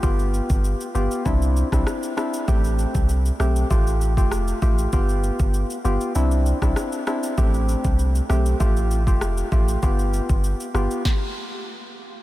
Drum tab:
SH |xxxxxxxxxxxxxxxx|xxxxxxxxxxxxxxxx|xxxxxxxxxxxxxxxx|xxxxxxxxxxxxxxxx|
SD |-----------rr-r-|------r-----r---|-----------rr-r-|------r-----r---|
BD |o--o----o--o----|o--o----o--o--o-|o--o-------o----|o--o----o--o--o-|

SH |xxxxxxxx--------|
SD |------r-o-------|
BD |o--o----o-------|